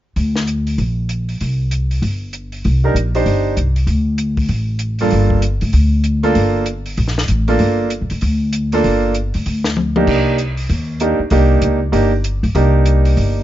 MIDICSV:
0, 0, Header, 1, 5, 480
1, 0, Start_track
1, 0, Key_signature, -2, "minor"
1, 0, Tempo, 309917
1, 240, Time_signature, 4, 2, 24, 8
1, 20805, End_track
2, 0, Start_track
2, 0, Title_t, "Grand piano"
2, 0, Program_c, 0, 0
2, 4399, Note_on_c, 0, 62, 51
2, 4401, Note_on_c, 0, 67, 48
2, 4411, Note_on_c, 0, 63, 46
2, 4416, Note_on_c, 0, 70, 61
2, 4554, Note_off_c, 0, 62, 0
2, 4555, Note_off_c, 0, 67, 0
2, 4560, Note_off_c, 0, 63, 0
2, 4563, Note_off_c, 0, 70, 0
2, 4880, Note_on_c, 0, 62, 57
2, 4882, Note_on_c, 0, 63, 50
2, 4884, Note_on_c, 0, 67, 47
2, 4890, Note_on_c, 0, 72, 57
2, 5497, Note_off_c, 0, 62, 0
2, 5499, Note_off_c, 0, 63, 0
2, 5499, Note_off_c, 0, 67, 0
2, 5502, Note_off_c, 0, 72, 0
2, 7755, Note_on_c, 0, 58, 47
2, 7755, Note_on_c, 0, 62, 46
2, 7759, Note_on_c, 0, 43, 50
2, 7761, Note_on_c, 0, 65, 51
2, 7764, Note_on_c, 0, 69, 61
2, 8375, Note_off_c, 0, 62, 0
2, 8376, Note_off_c, 0, 58, 0
2, 8378, Note_off_c, 0, 43, 0
2, 8378, Note_off_c, 0, 65, 0
2, 8380, Note_off_c, 0, 69, 0
2, 9654, Note_on_c, 0, 58, 67
2, 9659, Note_on_c, 0, 65, 57
2, 9662, Note_on_c, 0, 69, 71
2, 9664, Note_on_c, 0, 62, 57
2, 10285, Note_off_c, 0, 58, 0
2, 10287, Note_off_c, 0, 65, 0
2, 10289, Note_off_c, 0, 69, 0
2, 10290, Note_off_c, 0, 62, 0
2, 11584, Note_on_c, 0, 58, 63
2, 11590, Note_on_c, 0, 62, 53
2, 11596, Note_on_c, 0, 65, 56
2, 11601, Note_on_c, 0, 69, 61
2, 12210, Note_off_c, 0, 58, 0
2, 12212, Note_off_c, 0, 62, 0
2, 12216, Note_off_c, 0, 65, 0
2, 12218, Note_off_c, 0, 69, 0
2, 13521, Note_on_c, 0, 58, 65
2, 13529, Note_on_c, 0, 62, 62
2, 13535, Note_on_c, 0, 65, 59
2, 13537, Note_on_c, 0, 69, 68
2, 14138, Note_off_c, 0, 58, 0
2, 14142, Note_off_c, 0, 62, 0
2, 14145, Note_off_c, 0, 65, 0
2, 14146, Note_off_c, 0, 69, 0
2, 15428, Note_on_c, 0, 58, 60
2, 15434, Note_on_c, 0, 62, 55
2, 15436, Note_on_c, 0, 63, 57
2, 15436, Note_on_c, 0, 67, 66
2, 16050, Note_off_c, 0, 58, 0
2, 16053, Note_off_c, 0, 62, 0
2, 16054, Note_off_c, 0, 67, 0
2, 16055, Note_off_c, 0, 63, 0
2, 17047, Note_on_c, 0, 58, 52
2, 17050, Note_on_c, 0, 62, 50
2, 17052, Note_on_c, 0, 63, 52
2, 17058, Note_on_c, 0, 67, 58
2, 17315, Note_off_c, 0, 58, 0
2, 17317, Note_off_c, 0, 62, 0
2, 17317, Note_off_c, 0, 63, 0
2, 17321, Note_off_c, 0, 67, 0
2, 17521, Note_on_c, 0, 58, 66
2, 17526, Note_on_c, 0, 62, 54
2, 17528, Note_on_c, 0, 63, 58
2, 17535, Note_on_c, 0, 67, 73
2, 18241, Note_off_c, 0, 58, 0
2, 18244, Note_off_c, 0, 62, 0
2, 18245, Note_off_c, 0, 63, 0
2, 18249, Note_off_c, 0, 67, 0
2, 18464, Note_on_c, 0, 62, 55
2, 18464, Note_on_c, 0, 63, 51
2, 18465, Note_on_c, 0, 58, 58
2, 18473, Note_on_c, 0, 67, 64
2, 18743, Note_off_c, 0, 58, 0
2, 18743, Note_off_c, 0, 62, 0
2, 18743, Note_off_c, 0, 63, 0
2, 18747, Note_off_c, 0, 67, 0
2, 19439, Note_on_c, 0, 58, 56
2, 19443, Note_on_c, 0, 62, 52
2, 19444, Note_on_c, 0, 67, 62
2, 19445, Note_on_c, 0, 63, 52
2, 20770, Note_off_c, 0, 58, 0
2, 20772, Note_off_c, 0, 62, 0
2, 20772, Note_off_c, 0, 67, 0
2, 20773, Note_off_c, 0, 63, 0
2, 20805, End_track
3, 0, Start_track
3, 0, Title_t, "Upright bass"
3, 0, Program_c, 1, 32
3, 251, Note_on_c, 1, 38, 68
3, 1159, Note_off_c, 1, 38, 0
3, 1211, Note_on_c, 1, 34, 67
3, 2119, Note_off_c, 1, 34, 0
3, 2186, Note_on_c, 1, 36, 64
3, 3088, Note_off_c, 1, 36, 0
3, 3129, Note_on_c, 1, 31, 67
3, 4039, Note_off_c, 1, 31, 0
3, 4103, Note_on_c, 1, 36, 72
3, 4542, Note_off_c, 1, 36, 0
3, 4558, Note_on_c, 1, 34, 65
3, 5008, Note_off_c, 1, 34, 0
3, 5047, Note_on_c, 1, 31, 73
3, 5493, Note_off_c, 1, 31, 0
3, 5529, Note_on_c, 1, 36, 64
3, 5975, Note_off_c, 1, 36, 0
3, 5990, Note_on_c, 1, 38, 73
3, 6910, Note_off_c, 1, 38, 0
3, 6950, Note_on_c, 1, 33, 68
3, 7871, Note_off_c, 1, 33, 0
3, 7937, Note_on_c, 1, 31, 75
3, 8658, Note_off_c, 1, 31, 0
3, 8704, Note_on_c, 1, 38, 60
3, 8870, Note_off_c, 1, 38, 0
3, 8879, Note_on_c, 1, 38, 73
3, 9795, Note_off_c, 1, 38, 0
3, 9844, Note_on_c, 1, 31, 74
3, 10758, Note_off_c, 1, 31, 0
3, 10805, Note_on_c, 1, 34, 78
3, 11253, Note_off_c, 1, 34, 0
3, 11284, Note_on_c, 1, 33, 70
3, 11732, Note_off_c, 1, 33, 0
3, 11767, Note_on_c, 1, 31, 74
3, 12362, Note_off_c, 1, 31, 0
3, 12412, Note_on_c, 1, 34, 48
3, 12552, Note_off_c, 1, 34, 0
3, 12562, Note_on_c, 1, 38, 59
3, 12713, Note_off_c, 1, 38, 0
3, 12733, Note_on_c, 1, 38, 74
3, 13642, Note_off_c, 1, 38, 0
3, 13698, Note_on_c, 1, 31, 74
3, 14418, Note_off_c, 1, 31, 0
3, 14478, Note_on_c, 1, 38, 63
3, 14640, Note_off_c, 1, 38, 0
3, 14653, Note_on_c, 1, 38, 67
3, 15561, Note_off_c, 1, 38, 0
3, 15600, Note_on_c, 1, 36, 74
3, 16514, Note_off_c, 1, 36, 0
3, 16564, Note_on_c, 1, 39, 74
3, 17289, Note_off_c, 1, 39, 0
3, 17516, Note_on_c, 1, 36, 77
3, 17966, Note_off_c, 1, 36, 0
3, 17993, Note_on_c, 1, 37, 72
3, 18444, Note_off_c, 1, 37, 0
3, 18471, Note_on_c, 1, 31, 72
3, 19200, Note_off_c, 1, 31, 0
3, 19252, Note_on_c, 1, 34, 69
3, 19424, Note_off_c, 1, 34, 0
3, 19433, Note_on_c, 1, 36, 81
3, 20348, Note_off_c, 1, 36, 0
3, 20396, Note_on_c, 1, 31, 72
3, 20805, Note_off_c, 1, 31, 0
3, 20805, End_track
4, 0, Start_track
4, 0, Title_t, "Muted upright bass strokes"
4, 17339, Note_on_c, 9, 29, 35
4, 17493, Note_off_c, 9, 29, 0
4, 20805, End_track
5, 0, Start_track
5, 0, Title_t, "Drums"
5, 251, Note_on_c, 9, 46, 31
5, 406, Note_off_c, 9, 46, 0
5, 551, Note_on_c, 9, 38, 34
5, 706, Note_off_c, 9, 38, 0
5, 733, Note_on_c, 9, 42, 40
5, 888, Note_off_c, 9, 42, 0
5, 1034, Note_on_c, 9, 46, 29
5, 1189, Note_off_c, 9, 46, 0
5, 1212, Note_on_c, 9, 46, 31
5, 1367, Note_off_c, 9, 46, 0
5, 1690, Note_on_c, 9, 42, 42
5, 1845, Note_off_c, 9, 42, 0
5, 1993, Note_on_c, 9, 46, 27
5, 2148, Note_off_c, 9, 46, 0
5, 2177, Note_on_c, 9, 46, 34
5, 2332, Note_off_c, 9, 46, 0
5, 2652, Note_on_c, 9, 42, 43
5, 2807, Note_off_c, 9, 42, 0
5, 2957, Note_on_c, 9, 46, 30
5, 3112, Note_off_c, 9, 46, 0
5, 3137, Note_on_c, 9, 46, 35
5, 3292, Note_off_c, 9, 46, 0
5, 3608, Note_on_c, 9, 42, 40
5, 3763, Note_off_c, 9, 42, 0
5, 3907, Note_on_c, 9, 46, 29
5, 4062, Note_off_c, 9, 46, 0
5, 4095, Note_on_c, 9, 46, 35
5, 4250, Note_off_c, 9, 46, 0
5, 4585, Note_on_c, 9, 42, 43
5, 4739, Note_off_c, 9, 42, 0
5, 4874, Note_on_c, 9, 46, 32
5, 5029, Note_off_c, 9, 46, 0
5, 5050, Note_on_c, 9, 46, 37
5, 5204, Note_off_c, 9, 46, 0
5, 5526, Note_on_c, 9, 42, 41
5, 5681, Note_off_c, 9, 42, 0
5, 5824, Note_on_c, 9, 46, 31
5, 5979, Note_off_c, 9, 46, 0
5, 5997, Note_on_c, 9, 46, 35
5, 6152, Note_off_c, 9, 46, 0
5, 6474, Note_on_c, 9, 42, 45
5, 6629, Note_off_c, 9, 42, 0
5, 6772, Note_on_c, 9, 46, 30
5, 6774, Note_on_c, 9, 36, 48
5, 6926, Note_off_c, 9, 46, 0
5, 6929, Note_off_c, 9, 36, 0
5, 6948, Note_on_c, 9, 46, 36
5, 7103, Note_off_c, 9, 46, 0
5, 7418, Note_on_c, 9, 42, 44
5, 7572, Note_off_c, 9, 42, 0
5, 7723, Note_on_c, 9, 46, 31
5, 7878, Note_off_c, 9, 46, 0
5, 7907, Note_on_c, 9, 46, 38
5, 8062, Note_off_c, 9, 46, 0
5, 8214, Note_on_c, 9, 36, 43
5, 8368, Note_off_c, 9, 36, 0
5, 8395, Note_on_c, 9, 42, 49
5, 8550, Note_off_c, 9, 42, 0
5, 8689, Note_on_c, 9, 46, 33
5, 8844, Note_off_c, 9, 46, 0
5, 8869, Note_on_c, 9, 46, 40
5, 9024, Note_off_c, 9, 46, 0
5, 9351, Note_on_c, 9, 42, 45
5, 9506, Note_off_c, 9, 42, 0
5, 9655, Note_on_c, 9, 46, 30
5, 9809, Note_off_c, 9, 46, 0
5, 9836, Note_on_c, 9, 46, 39
5, 9991, Note_off_c, 9, 46, 0
5, 10312, Note_on_c, 9, 42, 48
5, 10467, Note_off_c, 9, 42, 0
5, 10621, Note_on_c, 9, 46, 36
5, 10776, Note_off_c, 9, 46, 0
5, 10801, Note_on_c, 9, 46, 40
5, 10956, Note_off_c, 9, 46, 0
5, 10959, Note_on_c, 9, 38, 26
5, 11114, Note_off_c, 9, 38, 0
5, 11119, Note_on_c, 9, 38, 38
5, 11274, Note_off_c, 9, 38, 0
5, 11275, Note_on_c, 9, 42, 45
5, 11430, Note_off_c, 9, 42, 0
5, 11581, Note_on_c, 9, 46, 32
5, 11736, Note_off_c, 9, 46, 0
5, 11753, Note_on_c, 9, 46, 37
5, 11908, Note_off_c, 9, 46, 0
5, 12240, Note_on_c, 9, 42, 49
5, 12394, Note_off_c, 9, 42, 0
5, 12544, Note_on_c, 9, 46, 34
5, 12699, Note_off_c, 9, 46, 0
5, 12718, Note_on_c, 9, 46, 38
5, 12873, Note_off_c, 9, 46, 0
5, 13206, Note_on_c, 9, 42, 51
5, 13360, Note_off_c, 9, 42, 0
5, 13509, Note_on_c, 9, 46, 33
5, 13664, Note_off_c, 9, 46, 0
5, 13694, Note_on_c, 9, 46, 40
5, 13849, Note_off_c, 9, 46, 0
5, 14163, Note_on_c, 9, 42, 46
5, 14318, Note_off_c, 9, 42, 0
5, 14465, Note_on_c, 9, 46, 35
5, 14620, Note_off_c, 9, 46, 0
5, 14649, Note_on_c, 9, 46, 42
5, 14804, Note_off_c, 9, 46, 0
5, 14937, Note_on_c, 9, 38, 48
5, 15092, Note_off_c, 9, 38, 0
5, 15128, Note_on_c, 9, 47, 39
5, 15283, Note_off_c, 9, 47, 0
5, 15424, Note_on_c, 9, 47, 54
5, 15579, Note_off_c, 9, 47, 0
5, 15599, Note_on_c, 9, 49, 60
5, 15601, Note_on_c, 9, 36, 62
5, 15754, Note_off_c, 9, 49, 0
5, 15756, Note_off_c, 9, 36, 0
5, 16081, Note_on_c, 9, 42, 46
5, 16236, Note_off_c, 9, 42, 0
5, 16375, Note_on_c, 9, 46, 35
5, 16530, Note_off_c, 9, 46, 0
5, 16561, Note_on_c, 9, 46, 39
5, 16716, Note_off_c, 9, 46, 0
5, 17036, Note_on_c, 9, 42, 48
5, 17191, Note_off_c, 9, 42, 0
5, 17507, Note_on_c, 9, 46, 39
5, 17662, Note_off_c, 9, 46, 0
5, 17991, Note_on_c, 9, 42, 49
5, 18146, Note_off_c, 9, 42, 0
5, 18475, Note_on_c, 9, 46, 42
5, 18630, Note_off_c, 9, 46, 0
5, 18960, Note_on_c, 9, 42, 48
5, 19115, Note_off_c, 9, 42, 0
5, 19261, Note_on_c, 9, 46, 32
5, 19415, Note_off_c, 9, 46, 0
5, 19437, Note_on_c, 9, 46, 39
5, 19592, Note_off_c, 9, 46, 0
5, 19911, Note_on_c, 9, 42, 49
5, 20066, Note_off_c, 9, 42, 0
5, 20217, Note_on_c, 9, 46, 37
5, 20372, Note_off_c, 9, 46, 0
5, 20398, Note_on_c, 9, 46, 38
5, 20553, Note_off_c, 9, 46, 0
5, 20805, End_track
0, 0, End_of_file